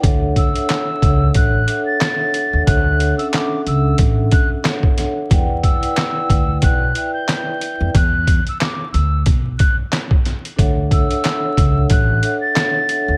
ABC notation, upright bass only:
X:1
M:4/4
L:1/16
Q:"Swing 16ths" 1/4=91
K:D
V:1 name="Upright bass" clef=bass
D,,3 z3 C,,2 A,,,2 z4 z _E,, | D,,3 z3 C,,2 A,,,2 z6 | E,,3 z3 D,,2 B,,,2 z4 z =F,, | E,,3 z3 D,,2 B,,,2 z6 |
D,,3 z3 C,,2 A,,,2 z4 z _E,, |]